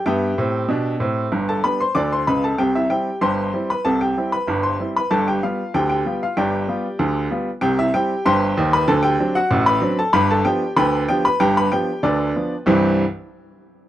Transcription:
<<
  \new Staff \with { instrumentName = "Upright piano" } { \time 2/4 \key c \major \tempo 4 = 95 <g' e'' g''>2~ | <g' e'' g''>16 <a' a''>16 <b' b''>16 <c'' c'''>16 <d'' d'''>16 <c'' c'''>16 <b' b''>16 <a' a''>16 | <g' g''>16 <e' e''>16 <g' g''>8 <c'' g'' c'''>8. <b' b''>16 | <a' a''>16 <g' g''>8 <b' b''>8 <c'' c'''>8 <b' b''>16 |
<a' a''>16 <g' g''>16 <f' f''>8 <g' g''>16 <g' g''>8 <f' f''>16 | <g' d'' g''>4. r8 | <g' g''>16 <e' e''>16 <g' g''>8 <c'' g'' c'''>8. <b' b''>16 | <a' a''>16 <g' g''>8 <fis' fis''>8 <b' b''>8 <a' a''>16 |
<b' b''>16 <a' a''>16 <g' g''>8 <b' g'' b''>8 <g' g''>16 <b' b''>16 | <g' g''>16 <b' b''>16 <g' g''>8 <d' b' d''>4 | <c, g, e g c' e' c''>8 r4. | }
  \new Staff \with { instrumentName = "Upright piano" } { \clef bass \time 2/4 \key c \major <g, b>8 <a, c'>8 <b, d'>8 <a, c'>8 | <g,, g,>8 <g b d'>8 <d, d>8 <des, des>8 | <c, c>8 <g c' e'>8 <g,, g,>8 <g c' e'>8 | <c, c>8 <g c' e'>8 <g,, g,>8 <g c' e'>8 |
<g,, g,>8 <g b>8 <d, d>8 <g b f'>8 | <g,, g,>8 <g b f'>8 <d, d>8 <g b f'>8 | <c, c>8 <g c' e'>8 <g,, g,>8 <ees, ees>8 | <d, d>8 <fis c' d'>8 <a,, a,>8 <fis c' d'>8 |
<g,, g,>8 <f b d'>8 <d, d>8 <f b d'>8 | <g,, g,>8 <f b d'>8 <d, d>8 <f b d'>8 | r2 | }
>>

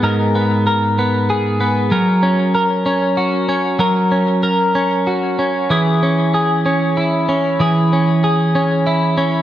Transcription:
\new Staff \with { instrumentName = "Clean electric guitar" } { \time 6/8 \key fis \mixolydian \tempo 4. = 64 <gis, b gis' ais'>8 b8 ais'8 b8 gis'8 b8 | <fis ais'>8 cis'8 ais'8 cis'8 fis'8 cis'8 | <fis ais'>8 cis'8 ais'8 cis'8 fis'8 cis'8 | <e gis'>8 cis'8 gis'8 cis'8 e'8 cis'8 |
<e gis'>8 cis'8 gis'8 cis'8 e'8 cis'8 | }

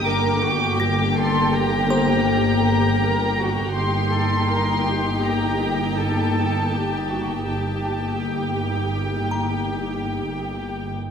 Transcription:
<<
  \new Staff \with { instrumentName = "Music box" } { \time 5/4 \key ees \lydian \tempo 4 = 81 ees''4 bes'''4. <c'' c'''>2~ <c'' c'''>8~ | <c'' c'''>8 r1 r8 | r2 r8 bes''2~ bes''8 | }
  \new Staff \with { instrumentName = "Violin section" } { \time 5/4 \key ees \lydian d'''4. c'''8 bes''2. | c'''2 bes''4 a''2 | a''4 g''2.~ g''8 r8 | }
  \new Staff \with { instrumentName = "Violin section" } { \time 5/4 \key ees \lydian <g' g''>1~ <g' g''>4 | <g' g''>1~ <g' g''>4 | <g' g''>1~ <g' g''>8. r16 | }
  \new Staff \with { instrumentName = "Cello section" } { \time 5/4 \key ees \lydian bes'8 fis'8 g'8 a'8 g'4 g'4 bes'8 fis'8 | g'8 a'8 bes'8 g'4. a'4 g'8 fis'8 | g'1~ g'8 r8 | }
  \new Staff \with { instrumentName = "Viola section" } { \time 5/4 \key ees \lydian <d bes>1~ <d bes>4 | <bes ees'>1~ <bes ees'>4 | <bes ees'>1~ <bes ees'>8. r16 | }
  \new Staff \with { instrumentName = "Double bass section" } { \clef bass \time 5/4 \key ees \lydian g,,1~ g,,4 | g,,1~ g,,4 | g,,1~ g,,8. r16 | }
>>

